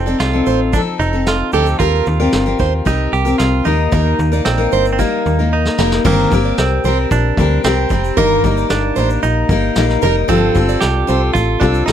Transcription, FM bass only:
Already playing: F1
0.21 C2
0.47 A1
1.00 F1
1.53 D2
1.80 D#2
2.07 D#2
2.34 G1
2.60 D#2
2.86 C2
3.13 C2
3.40 C2
3.67 D#2
3.93 D#2
4.19 D#2
4.47 A#1
4.73 G1
5.26 D#2
5.79 F1
6.05 G1
6.32 G1
6.58 C2
6.85 C2
7.11 A#1
7.38 D2
7.65 C2
7.91 F1
8.17 G1
8.44 G1
8.71 G1
8.98 A1
9.24 A#1
9.49 G1
9.77 A#1
10.03 F1
10.29 G1
10.56 G1
10.84 C2
11.10 C2
11.35 A1
11.62 C2
11.88 A1

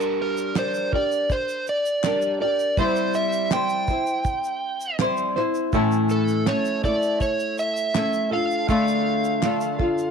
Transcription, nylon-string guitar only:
Already playing: G3 D4 G4 A#4
0.55 G3 D4 G4 A#4
0.92 D4 G4 A#4
2.03 G3 D4 G4 A#4
2.40 D4 G4 A#4
2.78 G3 C4 E4 C5
3.51 G3 C4 E4 C5
3.88 C4 E4 C5
4.99 G3 C4 E4 C5
5.36 C4 E4 C5
5.73 A2 E3 A3 C#4 E4 A4
6.46 A3 C#4 E4 A4
6.83 A3 E4 A4
7.94 A3 C#4 E4 A4
8.31 D4 F4 A4
8.68 D3 A3 D4 F4 A4
9.42 A3 D4 F4 A4
9.78 D4 F4 A4

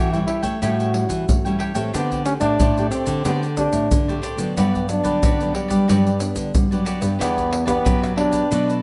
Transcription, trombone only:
Already playing: F#4
0.13 E4
0.27 E4
0.61 F#4
1.95 B3
2.26 C#4
2.40 D4
2.91 C4
3.25 B3
3.57 D4
4.57 B3
4.89 D4
5.55 G3
7.21 B3
7.67 B3
8.17 D4

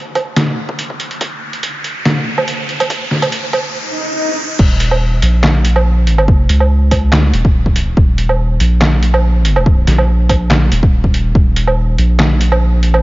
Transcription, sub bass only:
4.59 D#1
5.22 A#1
6.49 C#2
7.34 D#1
7.97 D#1
8.60 A#1
9.87 A#1
10.72 D#1
11.35 D#1
11.98 A#1
12.86 A1

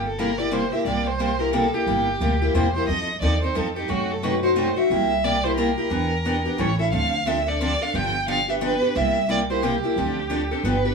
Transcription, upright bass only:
Already playing: G1
0.85 C2
1.86 G1
2.20 D2
2.54 E2
2.88 F2
3.21 D#2
3.55 F2
3.89 F#2
4.90 C2
5.91 E2
6.59 A1
6.92 D2
7.94 G1
8.95 C2
9.96 D2
10.63 G1

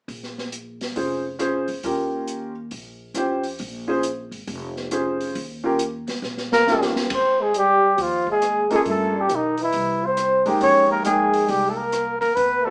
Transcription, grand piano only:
0.96 C#4 F4 G#4 C5
1.39 C#4 F4 G#4 C5
1.84 C#4 F4 G4 A#4
3.15 C#4 F4 G4 C5
3.88 C#4 F4 G#4 C5
4.91 C#4 F4 G#4 C5
5.64 C#4 F4 G4 A#4
6.67 C#4 F4 G4 A#4
8.71 A#3 C#4 F4 A4
10.46 G#3 A#3 D#4 G4
11.05 G#3 A#3 D#4 G5
12.66 B3 C4 E4

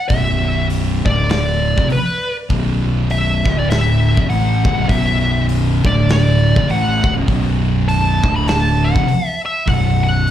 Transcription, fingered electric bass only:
0.10 B0
1.06 D1
1.78 F1
1.91 muted fingered electric bass stroke
2.50 B0
3.46 D1
4.18 F1
4.29 A1
4.65 D1
4.76 B0
4.89 B0
5.85 D1
6.56 F1
6.68 A1
7.04 D1
7.17 B0
7.28 B0
8.24 D1
8.95 F1
9.08 muted fingered electric bass stroke
9.68 B0

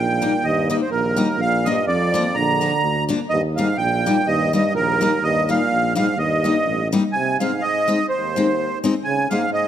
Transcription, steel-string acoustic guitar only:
0.22 G3 A#3 D#4
0.70 G3 A#3 D#4
1.16 G3 A#3 D#4
1.66 F3 A#3 D4
2.14 F3 A#3 D4
2.61 F3 A#3 D4
3.09 F3 A#3 D4
3.58 G3 A#3 D#4
4.06 G3 A#3 D#4
4.53 G3 A#3 D#4
5.01 G3 A#3 D#4
5.49 G3 A#3 D#4
5.95 G3 A#3 D#4
6.44 G3 A#3 D#4
6.92 G3 A#3 D#4
7.40 G#3 C4 D#4
7.88 G#3 C4 D#4
8.36 G#3 C4 D#4
8.84 G#3 C4 D#4
9.31 G#3 A#3 D#4

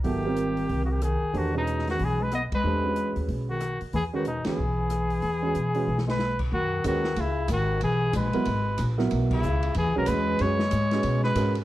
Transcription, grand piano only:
0.04 F#3 B3 E4 A4
0.25 G3 C4 F4 A#4
1.33 A3 D4 G4 C5
1.53 G#3 C#4 F#4 B4
2.64 A3 D4 G4 C5
2.84 G#3 C#4 F#4 B4
4.13 G#3 C#4 F#4 B4
4.45 G#3 C#4 F#4 B4
5.42 G#3 C#4 F#4 B4
5.75 G#3 C#4 F#4 B4
6.84 G#3 C#4 F#4 B4
8.33 F#3 B3 E4 A#4
8.98 F#3 B3 E4 A#4
9.96 G#3 C#4 F#4 B4
10.40 G#3 C#4 F#4 B4
10.93 G#3 C#4 F#4 B4
11.36 G#3 C#4 F#4 A#4

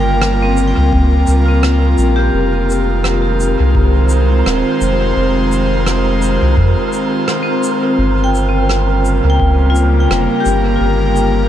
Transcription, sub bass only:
Already playing: G1
0.77 C#2
0.93 C#2
1.28 C#2
1.98 A#1
2.34 F1
3.60 C2
4.46 D#1
4.81 F1
5.16 F1
6.42 C2
6.57 F2
7.98 G1
9.24 C#2
10.10 F1
10.46 G1
10.80 G1

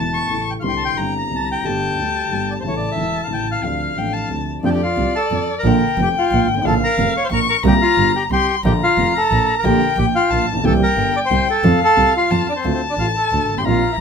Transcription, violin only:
Already playing: A5
0.14 C#6
0.63 C6
0.98 A#5
1.65 A5
2.63 A5
3.64 F5
3.98 G5
4.13 A5
4.63 D5
5.67 G5
6.65 F5
7.32 C#6
7.66 A#5
8.33 C6
8.66 A#5
9.65 G5
10.31 A5
10.65 G5
11.63 F5
12.31 A5
12.65 A5
13.58 C6
13.65 A#5

